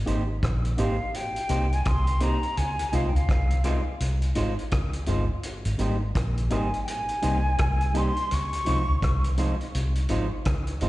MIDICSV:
0, 0, Header, 1, 6, 480
1, 0, Start_track
1, 0, Key_signature, -4, "major"
1, 0, Tempo, 716846
1, 1725, Time_signature, 4, 2, 24, 8
1, 7291, End_track
2, 0, Start_track
2, 0, Title_t, "Flute"
2, 0, Program_c, 0, 73
2, 534, Note_on_c, 0, 77, 81
2, 775, Note_on_c, 0, 79, 91
2, 785, Note_off_c, 0, 77, 0
2, 1161, Note_on_c, 0, 80, 91
2, 1171, Note_off_c, 0, 79, 0
2, 1255, Note_on_c, 0, 84, 98
2, 1265, Note_off_c, 0, 80, 0
2, 1497, Note_on_c, 0, 82, 92
2, 1507, Note_off_c, 0, 84, 0
2, 1727, Note_on_c, 0, 80, 96
2, 1737, Note_off_c, 0, 82, 0
2, 1973, Note_on_c, 0, 77, 77
2, 1983, Note_off_c, 0, 80, 0
2, 2053, Note_off_c, 0, 77, 0
2, 2057, Note_on_c, 0, 79, 53
2, 2115, Note_on_c, 0, 77, 80
2, 2125, Note_off_c, 0, 79, 0
2, 2592, Note_off_c, 0, 77, 0
2, 4376, Note_on_c, 0, 80, 75
2, 4559, Note_off_c, 0, 80, 0
2, 4579, Note_on_c, 0, 79, 59
2, 4618, Note_on_c, 0, 80, 94
2, 4629, Note_off_c, 0, 79, 0
2, 5339, Note_on_c, 0, 84, 98
2, 5349, Note_off_c, 0, 80, 0
2, 5585, Note_on_c, 0, 85, 97
2, 5595, Note_off_c, 0, 84, 0
2, 6294, Note_off_c, 0, 85, 0
2, 7291, End_track
3, 0, Start_track
3, 0, Title_t, "Clean electric guitar"
3, 0, Program_c, 1, 27
3, 45, Note_on_c, 1, 63, 76
3, 50, Note_on_c, 1, 67, 77
3, 52, Note_on_c, 1, 72, 83
3, 150, Note_off_c, 1, 63, 0
3, 152, Note_off_c, 1, 67, 0
3, 153, Note_off_c, 1, 72, 0
3, 526, Note_on_c, 1, 63, 92
3, 532, Note_on_c, 1, 67, 90
3, 535, Note_on_c, 1, 72, 101
3, 630, Note_off_c, 1, 63, 0
3, 633, Note_off_c, 1, 67, 0
3, 634, Note_off_c, 1, 72, 0
3, 1002, Note_on_c, 1, 63, 84
3, 1005, Note_on_c, 1, 67, 77
3, 1010, Note_on_c, 1, 72, 89
3, 1108, Note_off_c, 1, 63, 0
3, 1109, Note_off_c, 1, 67, 0
3, 1112, Note_off_c, 1, 72, 0
3, 1480, Note_on_c, 1, 63, 70
3, 1485, Note_on_c, 1, 67, 78
3, 1488, Note_on_c, 1, 72, 89
3, 1586, Note_off_c, 1, 63, 0
3, 1589, Note_off_c, 1, 67, 0
3, 1590, Note_off_c, 1, 72, 0
3, 1960, Note_on_c, 1, 63, 77
3, 1965, Note_on_c, 1, 65, 80
3, 1969, Note_on_c, 1, 72, 75
3, 2066, Note_off_c, 1, 63, 0
3, 2069, Note_off_c, 1, 65, 0
3, 2071, Note_off_c, 1, 72, 0
3, 2437, Note_on_c, 1, 63, 91
3, 2443, Note_on_c, 1, 65, 88
3, 2446, Note_on_c, 1, 72, 85
3, 2545, Note_off_c, 1, 63, 0
3, 2548, Note_off_c, 1, 65, 0
3, 2549, Note_off_c, 1, 72, 0
3, 2922, Note_on_c, 1, 63, 80
3, 2926, Note_on_c, 1, 65, 96
3, 2931, Note_on_c, 1, 72, 105
3, 3027, Note_off_c, 1, 63, 0
3, 3029, Note_off_c, 1, 65, 0
3, 3031, Note_off_c, 1, 72, 0
3, 3399, Note_on_c, 1, 63, 66
3, 3405, Note_on_c, 1, 65, 71
3, 3409, Note_on_c, 1, 72, 87
3, 3506, Note_off_c, 1, 63, 0
3, 3508, Note_off_c, 1, 65, 0
3, 3510, Note_off_c, 1, 72, 0
3, 3880, Note_on_c, 1, 63, 76
3, 3884, Note_on_c, 1, 67, 79
3, 3889, Note_on_c, 1, 72, 75
3, 3986, Note_off_c, 1, 63, 0
3, 3988, Note_off_c, 1, 67, 0
3, 3990, Note_off_c, 1, 72, 0
3, 4360, Note_on_c, 1, 63, 80
3, 4364, Note_on_c, 1, 67, 79
3, 4368, Note_on_c, 1, 72, 87
3, 4466, Note_off_c, 1, 63, 0
3, 4468, Note_off_c, 1, 67, 0
3, 4470, Note_off_c, 1, 72, 0
3, 4841, Note_on_c, 1, 63, 99
3, 4845, Note_on_c, 1, 67, 96
3, 4848, Note_on_c, 1, 72, 100
3, 4946, Note_off_c, 1, 63, 0
3, 4948, Note_off_c, 1, 67, 0
3, 4950, Note_off_c, 1, 72, 0
3, 5322, Note_on_c, 1, 63, 80
3, 5327, Note_on_c, 1, 67, 86
3, 5331, Note_on_c, 1, 72, 71
3, 5426, Note_off_c, 1, 63, 0
3, 5429, Note_off_c, 1, 67, 0
3, 5431, Note_off_c, 1, 72, 0
3, 5803, Note_on_c, 1, 63, 75
3, 5807, Note_on_c, 1, 65, 83
3, 5811, Note_on_c, 1, 72, 79
3, 5907, Note_off_c, 1, 63, 0
3, 5909, Note_off_c, 1, 65, 0
3, 5911, Note_off_c, 1, 72, 0
3, 6284, Note_on_c, 1, 63, 68
3, 6289, Note_on_c, 1, 65, 75
3, 6292, Note_on_c, 1, 72, 85
3, 6387, Note_off_c, 1, 63, 0
3, 6390, Note_off_c, 1, 65, 0
3, 6392, Note_off_c, 1, 72, 0
3, 6763, Note_on_c, 1, 63, 94
3, 6767, Note_on_c, 1, 65, 87
3, 6771, Note_on_c, 1, 72, 96
3, 6867, Note_off_c, 1, 63, 0
3, 6869, Note_off_c, 1, 65, 0
3, 6871, Note_off_c, 1, 72, 0
3, 7242, Note_on_c, 1, 63, 75
3, 7247, Note_on_c, 1, 65, 86
3, 7250, Note_on_c, 1, 72, 72
3, 7291, Note_off_c, 1, 63, 0
3, 7291, Note_off_c, 1, 65, 0
3, 7291, Note_off_c, 1, 72, 0
3, 7291, End_track
4, 0, Start_track
4, 0, Title_t, "Tine electric piano"
4, 0, Program_c, 2, 4
4, 38, Note_on_c, 2, 58, 80
4, 40, Note_on_c, 2, 60, 71
4, 41, Note_on_c, 2, 67, 85
4, 42, Note_on_c, 2, 63, 73
4, 147, Note_off_c, 2, 58, 0
4, 148, Note_off_c, 2, 60, 0
4, 149, Note_off_c, 2, 63, 0
4, 149, Note_off_c, 2, 67, 0
4, 519, Note_on_c, 2, 58, 88
4, 524, Note_on_c, 2, 60, 83
4, 524, Note_on_c, 2, 63, 75
4, 525, Note_on_c, 2, 67, 91
4, 628, Note_off_c, 2, 58, 0
4, 630, Note_off_c, 2, 60, 0
4, 630, Note_off_c, 2, 63, 0
4, 630, Note_off_c, 2, 67, 0
4, 998, Note_on_c, 2, 58, 74
4, 999, Note_on_c, 2, 60, 73
4, 1000, Note_on_c, 2, 63, 81
4, 1002, Note_on_c, 2, 67, 90
4, 1107, Note_off_c, 2, 58, 0
4, 1107, Note_off_c, 2, 60, 0
4, 1108, Note_off_c, 2, 63, 0
4, 1109, Note_off_c, 2, 67, 0
4, 1477, Note_on_c, 2, 58, 84
4, 1479, Note_on_c, 2, 60, 82
4, 1479, Note_on_c, 2, 63, 86
4, 1479, Note_on_c, 2, 67, 94
4, 1586, Note_off_c, 2, 58, 0
4, 1587, Note_off_c, 2, 60, 0
4, 1587, Note_off_c, 2, 63, 0
4, 1587, Note_off_c, 2, 67, 0
4, 1957, Note_on_c, 2, 56, 76
4, 1959, Note_on_c, 2, 63, 67
4, 1960, Note_on_c, 2, 60, 72
4, 1960, Note_on_c, 2, 65, 82
4, 2066, Note_off_c, 2, 56, 0
4, 2067, Note_off_c, 2, 60, 0
4, 2067, Note_off_c, 2, 63, 0
4, 2067, Note_off_c, 2, 65, 0
4, 2438, Note_on_c, 2, 60, 73
4, 2438, Note_on_c, 2, 63, 78
4, 2439, Note_on_c, 2, 56, 82
4, 2441, Note_on_c, 2, 65, 93
4, 2546, Note_off_c, 2, 56, 0
4, 2546, Note_off_c, 2, 60, 0
4, 2546, Note_off_c, 2, 63, 0
4, 2548, Note_off_c, 2, 65, 0
4, 2915, Note_on_c, 2, 56, 79
4, 2916, Note_on_c, 2, 60, 70
4, 2917, Note_on_c, 2, 63, 79
4, 2918, Note_on_c, 2, 65, 88
4, 3025, Note_off_c, 2, 56, 0
4, 3025, Note_off_c, 2, 60, 0
4, 3025, Note_off_c, 2, 63, 0
4, 3026, Note_off_c, 2, 65, 0
4, 3393, Note_on_c, 2, 56, 88
4, 3394, Note_on_c, 2, 63, 75
4, 3397, Note_on_c, 2, 60, 75
4, 3399, Note_on_c, 2, 65, 91
4, 3503, Note_off_c, 2, 56, 0
4, 3504, Note_off_c, 2, 63, 0
4, 3505, Note_off_c, 2, 60, 0
4, 3506, Note_off_c, 2, 65, 0
4, 3872, Note_on_c, 2, 55, 80
4, 3874, Note_on_c, 2, 58, 77
4, 3876, Note_on_c, 2, 60, 75
4, 3877, Note_on_c, 2, 63, 94
4, 3983, Note_off_c, 2, 55, 0
4, 3984, Note_off_c, 2, 58, 0
4, 3985, Note_off_c, 2, 60, 0
4, 3985, Note_off_c, 2, 63, 0
4, 4355, Note_on_c, 2, 55, 79
4, 4355, Note_on_c, 2, 58, 77
4, 4355, Note_on_c, 2, 60, 78
4, 4357, Note_on_c, 2, 63, 89
4, 4464, Note_off_c, 2, 55, 0
4, 4464, Note_off_c, 2, 58, 0
4, 4464, Note_off_c, 2, 60, 0
4, 4465, Note_off_c, 2, 63, 0
4, 4834, Note_on_c, 2, 55, 83
4, 4836, Note_on_c, 2, 58, 81
4, 4838, Note_on_c, 2, 60, 80
4, 4839, Note_on_c, 2, 63, 82
4, 4944, Note_off_c, 2, 55, 0
4, 4945, Note_off_c, 2, 58, 0
4, 4946, Note_off_c, 2, 60, 0
4, 4946, Note_off_c, 2, 63, 0
4, 5315, Note_on_c, 2, 58, 81
4, 5316, Note_on_c, 2, 55, 89
4, 5319, Note_on_c, 2, 60, 80
4, 5320, Note_on_c, 2, 63, 96
4, 5424, Note_off_c, 2, 58, 0
4, 5425, Note_off_c, 2, 55, 0
4, 5426, Note_off_c, 2, 60, 0
4, 5427, Note_off_c, 2, 63, 0
4, 5792, Note_on_c, 2, 53, 83
4, 5797, Note_on_c, 2, 60, 77
4, 5798, Note_on_c, 2, 56, 73
4, 5798, Note_on_c, 2, 63, 83
4, 5903, Note_off_c, 2, 53, 0
4, 5905, Note_off_c, 2, 56, 0
4, 5905, Note_off_c, 2, 60, 0
4, 5906, Note_off_c, 2, 63, 0
4, 6278, Note_on_c, 2, 53, 86
4, 6279, Note_on_c, 2, 56, 86
4, 6281, Note_on_c, 2, 60, 70
4, 6282, Note_on_c, 2, 63, 88
4, 6386, Note_off_c, 2, 53, 0
4, 6386, Note_off_c, 2, 56, 0
4, 6387, Note_off_c, 2, 60, 0
4, 6388, Note_off_c, 2, 63, 0
4, 6758, Note_on_c, 2, 53, 85
4, 6759, Note_on_c, 2, 56, 66
4, 6760, Note_on_c, 2, 60, 72
4, 6763, Note_on_c, 2, 63, 88
4, 6865, Note_off_c, 2, 53, 0
4, 6866, Note_off_c, 2, 56, 0
4, 6866, Note_off_c, 2, 60, 0
4, 6868, Note_off_c, 2, 63, 0
4, 7243, Note_on_c, 2, 53, 92
4, 7244, Note_on_c, 2, 56, 83
4, 7245, Note_on_c, 2, 60, 84
4, 7245, Note_on_c, 2, 63, 93
4, 7291, Note_off_c, 2, 53, 0
4, 7291, Note_off_c, 2, 56, 0
4, 7291, Note_off_c, 2, 60, 0
4, 7291, Note_off_c, 2, 63, 0
4, 7291, End_track
5, 0, Start_track
5, 0, Title_t, "Fingered electric bass"
5, 0, Program_c, 3, 33
5, 52, Note_on_c, 3, 32, 94
5, 259, Note_off_c, 3, 32, 0
5, 289, Note_on_c, 3, 34, 76
5, 497, Note_off_c, 3, 34, 0
5, 531, Note_on_c, 3, 32, 90
5, 654, Note_off_c, 3, 32, 0
5, 1002, Note_on_c, 3, 36, 81
5, 1213, Note_off_c, 3, 36, 0
5, 1247, Note_on_c, 3, 36, 78
5, 1581, Note_off_c, 3, 36, 0
5, 1724, Note_on_c, 3, 37, 80
5, 1850, Note_off_c, 3, 37, 0
5, 1964, Note_on_c, 3, 36, 86
5, 2090, Note_off_c, 3, 36, 0
5, 2110, Note_on_c, 3, 37, 82
5, 2193, Note_off_c, 3, 37, 0
5, 2203, Note_on_c, 3, 36, 74
5, 2539, Note_off_c, 3, 36, 0
5, 2683, Note_on_c, 3, 36, 69
5, 2892, Note_off_c, 3, 36, 0
5, 2923, Note_on_c, 3, 32, 83
5, 3049, Note_off_c, 3, 32, 0
5, 3165, Note_on_c, 3, 37, 71
5, 3374, Note_off_c, 3, 37, 0
5, 3403, Note_on_c, 3, 31, 94
5, 3529, Note_off_c, 3, 31, 0
5, 3786, Note_on_c, 3, 32, 95
5, 3870, Note_off_c, 3, 32, 0
5, 3881, Note_on_c, 3, 32, 84
5, 4091, Note_off_c, 3, 32, 0
5, 4123, Note_on_c, 3, 34, 85
5, 4332, Note_off_c, 3, 34, 0
5, 4364, Note_on_c, 3, 32, 83
5, 4489, Note_off_c, 3, 32, 0
5, 4847, Note_on_c, 3, 36, 76
5, 5055, Note_off_c, 3, 36, 0
5, 5087, Note_on_c, 3, 36, 84
5, 5420, Note_off_c, 3, 36, 0
5, 5572, Note_on_c, 3, 37, 88
5, 5694, Note_off_c, 3, 37, 0
5, 5810, Note_on_c, 3, 36, 85
5, 5932, Note_off_c, 3, 36, 0
5, 5955, Note_on_c, 3, 37, 72
5, 6035, Note_off_c, 3, 37, 0
5, 6045, Note_on_c, 3, 36, 80
5, 6379, Note_off_c, 3, 36, 0
5, 6529, Note_on_c, 3, 36, 76
5, 6735, Note_off_c, 3, 36, 0
5, 6767, Note_on_c, 3, 32, 89
5, 6891, Note_off_c, 3, 32, 0
5, 7007, Note_on_c, 3, 37, 74
5, 7214, Note_off_c, 3, 37, 0
5, 7245, Note_on_c, 3, 31, 89
5, 7291, Note_off_c, 3, 31, 0
5, 7291, End_track
6, 0, Start_track
6, 0, Title_t, "Drums"
6, 48, Note_on_c, 9, 42, 50
6, 115, Note_off_c, 9, 42, 0
6, 287, Note_on_c, 9, 36, 102
6, 288, Note_on_c, 9, 42, 89
6, 296, Note_on_c, 9, 37, 103
6, 354, Note_off_c, 9, 36, 0
6, 355, Note_off_c, 9, 42, 0
6, 363, Note_off_c, 9, 37, 0
6, 433, Note_on_c, 9, 42, 46
6, 500, Note_off_c, 9, 42, 0
6, 521, Note_on_c, 9, 42, 65
6, 588, Note_off_c, 9, 42, 0
6, 766, Note_on_c, 9, 42, 74
6, 833, Note_off_c, 9, 42, 0
6, 911, Note_on_c, 9, 42, 44
6, 978, Note_off_c, 9, 42, 0
6, 997, Note_on_c, 9, 42, 65
6, 1064, Note_off_c, 9, 42, 0
6, 1155, Note_on_c, 9, 42, 35
6, 1222, Note_off_c, 9, 42, 0
6, 1240, Note_on_c, 9, 42, 88
6, 1245, Note_on_c, 9, 36, 93
6, 1247, Note_on_c, 9, 37, 95
6, 1307, Note_off_c, 9, 42, 0
6, 1312, Note_off_c, 9, 36, 0
6, 1314, Note_off_c, 9, 37, 0
6, 1385, Note_on_c, 9, 42, 50
6, 1452, Note_off_c, 9, 42, 0
6, 1474, Note_on_c, 9, 42, 59
6, 1541, Note_off_c, 9, 42, 0
6, 1626, Note_on_c, 9, 42, 34
6, 1693, Note_off_c, 9, 42, 0
6, 1722, Note_on_c, 9, 42, 73
6, 1789, Note_off_c, 9, 42, 0
6, 1868, Note_on_c, 9, 42, 59
6, 1935, Note_off_c, 9, 42, 0
6, 1959, Note_on_c, 9, 42, 56
6, 2026, Note_off_c, 9, 42, 0
6, 2116, Note_on_c, 9, 42, 33
6, 2182, Note_off_c, 9, 42, 0
6, 2202, Note_on_c, 9, 36, 100
6, 2205, Note_on_c, 9, 42, 84
6, 2213, Note_on_c, 9, 37, 101
6, 2269, Note_off_c, 9, 36, 0
6, 2272, Note_off_c, 9, 42, 0
6, 2280, Note_off_c, 9, 37, 0
6, 2346, Note_on_c, 9, 42, 47
6, 2413, Note_off_c, 9, 42, 0
6, 2436, Note_on_c, 9, 42, 65
6, 2447, Note_on_c, 9, 37, 55
6, 2503, Note_off_c, 9, 42, 0
6, 2514, Note_off_c, 9, 37, 0
6, 2681, Note_on_c, 9, 42, 89
6, 2748, Note_off_c, 9, 42, 0
6, 2824, Note_on_c, 9, 42, 41
6, 2891, Note_off_c, 9, 42, 0
6, 2913, Note_on_c, 9, 42, 70
6, 2980, Note_off_c, 9, 42, 0
6, 3071, Note_on_c, 9, 42, 30
6, 3138, Note_off_c, 9, 42, 0
6, 3156, Note_on_c, 9, 42, 87
6, 3162, Note_on_c, 9, 36, 92
6, 3163, Note_on_c, 9, 37, 108
6, 3223, Note_off_c, 9, 42, 0
6, 3229, Note_off_c, 9, 36, 0
6, 3230, Note_off_c, 9, 37, 0
6, 3302, Note_on_c, 9, 42, 53
6, 3369, Note_off_c, 9, 42, 0
6, 3390, Note_on_c, 9, 42, 58
6, 3456, Note_off_c, 9, 42, 0
6, 3637, Note_on_c, 9, 42, 74
6, 3704, Note_off_c, 9, 42, 0
6, 3783, Note_on_c, 9, 42, 56
6, 3850, Note_off_c, 9, 42, 0
6, 3874, Note_on_c, 9, 42, 59
6, 3941, Note_off_c, 9, 42, 0
6, 4120, Note_on_c, 9, 36, 108
6, 4121, Note_on_c, 9, 42, 101
6, 4129, Note_on_c, 9, 37, 103
6, 4187, Note_off_c, 9, 36, 0
6, 4187, Note_off_c, 9, 42, 0
6, 4196, Note_off_c, 9, 37, 0
6, 4268, Note_on_c, 9, 42, 47
6, 4335, Note_off_c, 9, 42, 0
6, 4355, Note_on_c, 9, 42, 61
6, 4365, Note_on_c, 9, 37, 56
6, 4422, Note_off_c, 9, 42, 0
6, 4432, Note_off_c, 9, 37, 0
6, 4511, Note_on_c, 9, 42, 32
6, 4578, Note_off_c, 9, 42, 0
6, 4604, Note_on_c, 9, 42, 80
6, 4671, Note_off_c, 9, 42, 0
6, 4745, Note_on_c, 9, 42, 42
6, 4812, Note_off_c, 9, 42, 0
6, 4837, Note_on_c, 9, 42, 67
6, 4904, Note_off_c, 9, 42, 0
6, 5078, Note_on_c, 9, 42, 80
6, 5084, Note_on_c, 9, 37, 118
6, 5085, Note_on_c, 9, 36, 94
6, 5145, Note_off_c, 9, 42, 0
6, 5151, Note_off_c, 9, 37, 0
6, 5152, Note_off_c, 9, 36, 0
6, 5227, Note_on_c, 9, 42, 43
6, 5294, Note_off_c, 9, 42, 0
6, 5321, Note_on_c, 9, 42, 66
6, 5388, Note_off_c, 9, 42, 0
6, 5467, Note_on_c, 9, 42, 34
6, 5534, Note_off_c, 9, 42, 0
6, 5565, Note_on_c, 9, 42, 80
6, 5631, Note_off_c, 9, 42, 0
6, 5710, Note_on_c, 9, 42, 52
6, 5777, Note_off_c, 9, 42, 0
6, 5799, Note_on_c, 9, 42, 56
6, 5866, Note_off_c, 9, 42, 0
6, 6043, Note_on_c, 9, 36, 94
6, 6043, Note_on_c, 9, 42, 89
6, 6051, Note_on_c, 9, 37, 99
6, 6110, Note_off_c, 9, 36, 0
6, 6110, Note_off_c, 9, 42, 0
6, 6118, Note_off_c, 9, 37, 0
6, 6188, Note_on_c, 9, 42, 50
6, 6255, Note_off_c, 9, 42, 0
6, 6277, Note_on_c, 9, 42, 63
6, 6344, Note_off_c, 9, 42, 0
6, 6431, Note_on_c, 9, 42, 32
6, 6498, Note_off_c, 9, 42, 0
6, 6526, Note_on_c, 9, 42, 80
6, 6593, Note_off_c, 9, 42, 0
6, 6665, Note_on_c, 9, 42, 42
6, 6732, Note_off_c, 9, 42, 0
6, 6754, Note_on_c, 9, 42, 73
6, 6821, Note_off_c, 9, 42, 0
6, 6998, Note_on_c, 9, 42, 79
6, 7004, Note_on_c, 9, 36, 86
6, 7004, Note_on_c, 9, 37, 105
6, 7065, Note_off_c, 9, 42, 0
6, 7071, Note_off_c, 9, 36, 0
6, 7071, Note_off_c, 9, 37, 0
6, 7144, Note_on_c, 9, 42, 47
6, 7211, Note_off_c, 9, 42, 0
6, 7236, Note_on_c, 9, 42, 57
6, 7291, Note_off_c, 9, 42, 0
6, 7291, End_track
0, 0, End_of_file